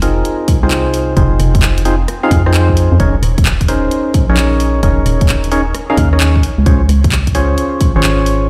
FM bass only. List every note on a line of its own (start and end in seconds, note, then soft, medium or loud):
0.00 0.23 F1 loud
0.63 1.15 C2 medium
1.17 1.38 F1 loud
1.39 2.07 F1 loud
2.31 2.89 F2 loud
2.92 2.99 F2 loud
3.00 3.21 D#1 loud
3.23 3.90 D#1 loud
4.29 4.81 A#1 medium
4.83 5.04 D#1 loud
5.06 5.73 D#1 loud
5.97 6.42 D#2 loud
6.58 6.65 C#2 loud
6.66 6.87 C#2 loud
6.89 7.56 C#2 loud
7.96 8.48 G#1 medium